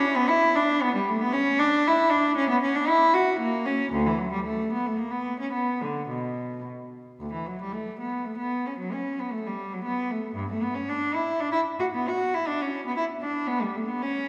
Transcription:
Already playing: C#4
0.16 B3
0.29 E4
0.55 D4
0.82 B3
0.95 G3
1.08 A3
1.21 B3
1.32 C#4
1.59 D4
1.87 E4
2.10 D4
2.37 C#4
2.50 B3
2.62 C#4
2.75 D4
2.88 E4
3.14 F#4
3.40 A#3
3.66 C#4
3.92 D2
4.07 E3
4.19 F#3
4.32 G3
4.45 A3
4.73 B3
4.87 A3
4.98 A#3
5.11 B3
5.40 C#4
5.53 B3
5.81 D3
6.09 B2
7.20 D2
7.33 E3
7.47 F#3
7.62 G3
7.73 A3
8.00 B3
8.25 A3
8.39 B3
8.67 C#4
8.79 F#3
8.92 C#4
9.20 B3
9.32 A3
9.47 G3
9.73 F#3
9.85 B3
10.11 A3
10.35 G2
10.51 A3
10.63 B3
10.75 C#4
10.89 D4
11.15 E4
11.41 D4
11.52 E4
11.80 F#4
11.95 B3
12.09 F#4
12.35 E4
12.47 D4
12.62 C#4
12.86 B3
12.96 E4
13.22 D4
13.47 B3
13.62 G3
13.75 A3
13.88 B3
14.02 C#4

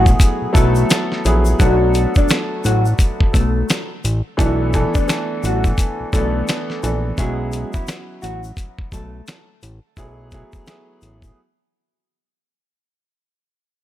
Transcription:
Already playing: A1 F#3 A3 B3 E4 G#4
0.06 kick, shaker
0.20 kick, closed hi-hat, shaker
0.42 B1
0.53 B1 F#3 A3 B3 E4 A4, kick, closed hi-hat, shaker
0.75 shaker
0.90 snare, closed hi-hat, shaker
1.12 snare
1.25 A#1 F#3 A3 B3 E4 G#4, closed hi-hat, shaker
1.45 shaker
1.59 B1 F#3 A3 B3 D4 F#4 A4, kick, closed hi-hat, shaker
1.94 closed hi-hat, shaker
2.15 D4 D5, kick, shaker
2.29 snare, closed hi-hat, shaker
2.64 A1 F#3 F#4, closed hi-hat, shaker
2.85 shaker
2.99 kick, closed hi-hat, shaker
3.21 B1, kick
3.33 B1 A3 A4, kick, closed hi-hat, shaker
3.69 snare, closed hi-hat, shaker
4.04 A1, closed hi-hat, shaker
4.37 B1 E3 A3 B3 D4 E4 A4, kick, closed hi-hat, shaker
4.73 E3 A3 B3 D4 A4, kick, closed hi-hat, shaker
4.94 D4 D5, kick, shaker
5.08 E3 A3 B3 D4 A4, snare, closed hi-hat, shaker
5.43 A1 F#3 F#4, closed hi-hat, shaker
5.64 kick, shaker
5.78 kick, closed hi-hat, shaker
6.00 B1
6.13 B1 E3 A3 B3 D4 A4, kick, closed hi-hat, shaker
6.48 snare, closed hi-hat, shaker
6.70 snare
6.83 A#1 E3 A3 B3 D4 A4, closed hi-hat, shaker
7.18 B1 F#3 G#3 B3 C#4 E4 F#4 G#4, kick, closed hi-hat, shaker
7.52 closed hi-hat, shaker
7.73 E3 E4, kick, shaker
7.87 snare, closed hi-hat, shaker
8.22 A1 F#3 F#4, closed hi-hat, shaker
8.43 shaker
8.57 kick, closed hi-hat, shaker
8.79 B1, kick
8.92 B1 A3 A4, kick, closed hi-hat, shaker
9.27 snare, closed hi-hat, shaker
9.62 A1, closed hi-hat, shaker
9.97 B1 F#3 A3 B3 E4 G#4, kick, closed hi-hat, shaker
10.31 F#3 A3 B3 E4 G#4, kick, closed hi-hat, shaker
10.52 kick, shaker
10.66 F#3 A3 B3 E4 G#4, snare, closed hi-hat, shaker
11.02 A1, closed hi-hat, shaker
11.22 kick, shaker

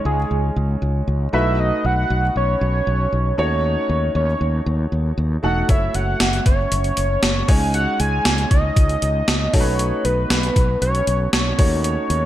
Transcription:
Already playing: G#3 C#4 D#4 C#5
0.05 C#2 G#4
0.31 C#2
0.56 C#2
0.82 C#2
1.08 C#2
1.33 B1 A3 D#4 F#4 B4 E5
1.60 D#5
1.85 B1 F#5
2.10 B1
2.36 B1 C#5
2.61 B1
2.87 B1
3.12 B1
3.38 D#2 A3 D#4 F#4 C#5
3.65 C#5
3.89 D#2
4.15 D#2 C#5
4.41 D#2
4.66 D#2
4.92 D#2
5.18 D#2
5.43 E1 A3 D#4 F#4 A4 F#5
5.68 F#1 A3 E4 F#4 C#5 E5, kick, closed hi-hat
5.94 F#1 F#5, closed hi-hat
6.20 F#1, snare, closed hi-hat
6.33 closed hi-hat
6.46 F#1 C#5, kick, closed hi-hat
6.72 F#1, closed hi-hat
6.84 closed hi-hat
6.97 F#1, closed hi-hat
7.23 F#1, snare, closed hi-hat
7.48 C#2 G#3 C#4 D#4 C#5 G#5, kick, open hi-hat
7.74 F#5, closed hi-hat
8.00 C#2 G#5, closed hi-hat
8.25 C#2, snare, closed hi-hat
8.38 closed hi-hat
8.51 C#2 D#5, kick, closed hi-hat
8.76 C#2, kick, closed hi-hat
8.89 closed hi-hat
9.02 C#2, closed hi-hat
9.28 C#2, snare, closed hi-hat
9.53 B1 A3 D#4 F#4 A4 C#5, kick, open hi-hat
9.60 B4
9.79 closed hi-hat
10.05 B1 B4, closed hi-hat
10.30 B1, snare, closed hi-hat
10.43 closed hi-hat
10.56 B1, kick, closed hi-hat
10.82 B1 C#5, closed hi-hat
10.95 closed hi-hat
11.07 B1, closed hi-hat
11.33 B1 C#5, snare, closed hi-hat
11.58 D#2 A3 D#4 F#4 C#5, kick, open hi-hat
11.84 C#5, closed hi-hat
12.10 D#2, closed hi-hat

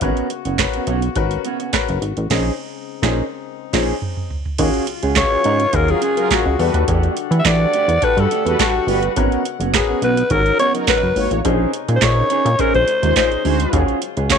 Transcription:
Already playing: E5
0.01 G#1 C#3 A#3 B3 C#4 F#4 A#4 B4, kick, closed hi-hat
0.17 closed hi-hat
0.30 muted clean electric guitar stroke, closed hi-hat
0.45 F#1 B3 C#4 F#4, closed hi-hat
0.58 C#4 F#4 A#4 B4, kick, snare, clap, closed hi-hat
0.73 B3 C#4 F#4, closed hi-hat
0.87 B1 B3 C#4 F#4, closed hi-hat
1.02 muted clean electric guitar stroke, closed hi-hat
1.16 G#1 C#4 F#4 A#4 B4, muted clean electric guitar stroke, kick, closed hi-hat
1.31 muted clean electric guitar stroke, closed hi-hat
1.45 B3 C#4 F#4, closed hi-hat
1.60 B3 C#4 F#4, closed hi-hat
1.73 C#4 F#4 A#4 B4, muted clean electric guitar stroke, kick, snare, clap, closed hi-hat
1.89 F#1, muted clean electric guitar stroke, closed hi-hat
2.02 G#1, closed hi-hat
2.17 A1, muted clean electric guitar stroke, closed hi-hat
2.30 A#1 G#3 C4 C#4 D#4 G#4 C5, kick, snare, crash
3.02 A#1 C#4 D#4 G#4 A#4 C5, kick, snare
3.73 A#1 C#4 D#4 G#4 C5, kick, snare, crash
4.02 mid tom
4.17 mid tom
4.30 floor tom
4.45 floor tom
4.58 D#2 C#3 F#3 G#3 C#4 F4 F#4 G#4, kick, closed hi-hat, crash
4.74 closed hi-hat
4.87 muted clean electric guitar stroke, closed hi-hat
5.03 C#2 C#4 F#4 G#4, closed hi-hat
5.16 C#4 F4 F#4 G#4 C#5, kick, snare, clap, closed hi-hat
5.31 C#4 F#4 G#4
5.44 G#2 C#4 F#4 G#4, closed hi-hat
5.60 muted clean electric guitar stroke, closed hi-hat
5.73 D#2 C#4 F4 F#4 G#4 A#4, muted clean electric guitar stroke, kick, closed hi-hat
5.88 F#3 F4 G#4 A#4, muted clean electric guitar stroke, closed hi-hat
6.01 C#4 F#4 G#4, closed hi-hat
6.17 F#3 C#4 F4 F#4 G#4 A#4, closed hi-hat
6.31 F#3 C#4 F4 F#4 G#4 A#4, muted clean electric guitar stroke, kick, snare, clap, closed hi-hat
6.46 C#2, muted clean electric guitar stroke
6.59 E2 D3 G3 A3 D4 F#4 G4 A4 B4 F#5, open hi-hat
6.74 D#2, closed hi-hat
6.88 E2 A3 D4 G4, kick, closed hi-hat
7.03 closed hi-hat
7.16 muted clean electric guitar stroke, closed hi-hat
7.31 E3 A3 D4 G4, closed hi-hat
7.39 E5
7.45 E3 D4 F#4 G4 A4 D5, muted clean electric guitar stroke, kick, snare, clap, closed hi-hat
7.60 A3 D4 A4
7.73 A3 D4 G4, closed hi-hat
7.88 E2, muted clean electric guitar stroke, closed hi-hat
8.02 D4 F#4 G4 A4 B4, muted clean electric guitar stroke, kick, closed hi-hat
8.17 G2 G3 F#4 A4 B4, muted clean electric guitar stroke, closed hi-hat
8.31 A3 D4 G4, closed hi-hat
8.45 E2 G3 A3 D4 F#4 A4 B4, closed hi-hat
8.59 G3 D4 F#4 G4 A4 B4, kick, snare, clap, closed hi-hat
8.75 muted clean electric guitar stroke
8.87 G1 G3 A3 D4 F#4 G4 B4, open hi-hat
9.03 muted clean electric guitar stroke, closed hi-hat
9.16 G#1 C#3 G#3 B3 C#4 F#4 A#4 B4, kick, closed hi-hat
9.32 closed hi-hat
9.45 muted clean electric guitar stroke, closed hi-hat
9.60 F#1 B3 C#4 F#4, closed hi-hat
9.73 C#4 F#4 G#4 A#4 B4, kick, snare, clap, closed hi-hat
9.89 B3 C#4 F#4
10.02 B1 B3 C#4 F#4 B4, closed hi-hat
10.17 muted clean electric guitar stroke, closed hi-hat
10.30 G#1 C#4 F#4 A#4 C#5, muted clean electric guitar stroke, kick, closed hi-hat
10.46 F#3 D#4 A#4, closed hi-hat
10.59 B3 C#4 F#4 C#5, closed hi-hat
10.74 F#3 B3 C#4 D#4 F#4 A#4, closed hi-hat
10.87 F#3 C#4 D#4 F#4 A#4 B4, muted clean electric guitar stroke, kick, snare, clap, closed hi-hat
11.03 F#1, muted clean electric guitar stroke
11.16 G#1 A#3 F#4 C#5, open hi-hat
11.31 A1, muted clean electric guitar stroke, closed hi-hat
11.45 A#1 C3 C#3 G#3 C#4 D#4 G#4 C5, kick, closed hi-hat
11.73 muted clean electric guitar stroke, closed hi-hat
11.88 A#2 C#4 D#4 G#4, closed hi-hat
11.96 C5
12.01 A#2 C#4 D#4 G#4 C5 C#5, muted clean electric guitar stroke, kick, snare, clap, closed hi-hat
12.17 C#4 D#4 A#4
12.30 C#4 D#4 G#4, closed hi-hat
12.45 A#2, muted clean electric guitar stroke, closed hi-hat
12.59 C#4 D#4 G#4 A#4 C5, kick, closed hi-hat
12.73 A#1 G#3 F4 C5, muted clean electric guitar stroke, closed hi-hat
12.87 muted clean electric guitar stroke, closed hi-hat
13.02 D#2 G#3 C#4 D#4 F4 A#4 C5, closed hi-hat
13.16 G#3 C#4 D#4 F4 G#4 C5, kick, snare, clap, closed hi-hat
13.31 muted clean electric guitar stroke, closed hi-hat
13.44 D2 G#3 C#4 D#4 F#4 G#4 C5, open hi-hat
13.60 muted clean electric guitar stroke, closed hi-hat
13.73 D#2 F#3 C#4 F4 F#4 G#4, kick, closed hi-hat
13.88 closed hi-hat
14.01 muted clean electric guitar stroke, closed hi-hat
14.17 C#2 C#4 F#4 G#4, closed hi-hat
14.30 C#4 F4 F#4 G#4 C#5, muted clean electric guitar stroke, kick, snare, clap, closed hi-hat

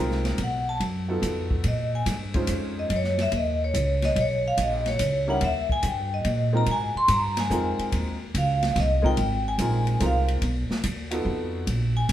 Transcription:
Already playing: C2 G#3 C4 D#4 F4 A#4
0.11 snare
0.24 snare, ride
0.38 B1, kick, ride
0.43 F#5
0.69 A5
0.80 F#2, kick, ride
1.08 B3 D#4 F4 F#4 A4
1.22 F2, kick, hi-hat pedal, ride
1.51 kick
1.64 A#2, kick, ride
1.68 D#5
1.95 G#5
2.06 G2, kick, snare, hi-hat pedal, ride
2.34 G#3 C#4 D#4 F4 C5, kick, ride
2.47 F2, kick, hi-hat pedal, ride
2.79 D#5
2.90 F#2, kick, ride
2.96 C#5
3.04 snare
3.18 E5, snare, ride
3.32 D#2, kick, ride
3.37 D#5
3.64 C#5
3.74 C#2, kick, hi-hat pedal, ride
4.02 D#5, snare, ride
4.16 B1, kick, ride
4.21 C#5
4.48 F5
4.58 A#1, kick, hi-hat pedal, ride
4.62 D#5
4.86 C#5, snare, ride
4.99 C#2, kick, hi-hat pedal, ride
5.27 G3 C#4 D#4 E4 A#4 F#5
5.41 D#2 E5, kick, ride
5.70 G#5, kick
5.83 G2, kick, hi-hat pedal, ride
5.88 G5
6.14 D#5
6.25 A#2, kick, ride
6.53 G#3 C4 D#4 F4 A#4
6.57 A#5
6.66 G#2, kick, ride
6.71 G#5
6.95 C6, muted upright bass stroke
7.08 G2, kick, hi-hat pedal, ride
7.13 A#5
7.37 G#5, snare, ride
7.50 F2 G#3 C4 D#4 F4 A#4, kick, hi-hat pedal
7.79 muted upright bass stroke, ride
7.92 D#2, kick, ride
8.34 C#2 F5, kick, hi-hat pedal, ride
8.63 snare, ride
8.76 C2, kick, snare, ride
8.80 D#5
9.02 G#3 C4 D#4 F4 A#4 G5, kick
9.17 G#1, kick, ride
9.48 G#5
9.58 A#1 G#3 C4 D#4 F4 A#4, kick, hi-hat pedal, ride
9.87 ride
10.00 C2 G#3 C4 D#4 F4 A#4, kick, hi-hat pedal, ride
10.06 F5
10.28 ride
10.42 B1, kick, ride
10.69 muted upright bass stroke, snare
10.84 D#2, kick, hi-hat pedal, ride
11.11 B3 D#4 F4 F#4 A4, ride
11.25 F2, kick
11.67 A#1, kick, ride
11.97 G#5
12.09 C2, kick, hi-hat pedal, ride

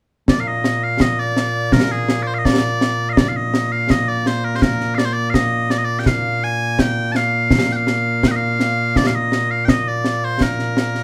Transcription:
0.28 A#2 A#3 D5, concert bass drum, snare
0.40 F5
0.48 D#5
0.64 snare
0.83 F5
1.00 D#5, concert bass drum, snare
1.19 D5
1.36 snare
1.72 A#4, concert bass drum, snare
1.92 G#4
2.09 snare
2.23 D5
2.27 C5
2.34 F5
2.38 D#5
2.45 D5, concert bass drum, snare
2.81 snare
3.09 D#5 F5
3.17 D5, concert bass drum, snare
3.28 F5
3.36 D#5
3.54 snare
3.72 F5
3.90 D#5, concert bass drum, snare
4.08 D5
4.26 C5, snare
4.45 A#4
4.56 C5
4.62 A#4, concert bass drum, snare
4.80 snare
4.95 D5 F5, snare
5.05 C5
5.13 D5
5.30 F5
5.34 D#5, concert bass drum, snare
5.70 D5, snare
5.78 D#5
5.85 D5
5.99 G5
6.06 F5, concert bass drum, snare
6.44 G#5
6.79 G5, concert bass drum, snare
7.12 A5, snare
7.16 F5
7.50 concert bass drum, snare
7.69 G5, snare
7.76 F5
7.87 snare
8.23 concert bass drum, snare
8.28 D#5 G5
8.36 F5
8.60 snare
8.96 D5, concert bass drum, snare
9.07 F5
9.15 D#5
9.32 snare
9.51 F5
9.65 D#5 G5, concert bass drum, snare
9.88 D5
10.04 snare
10.24 C5
10.41 A#4, concert bass drum, snare
10.59 snare
10.77 snare
10.95 snare

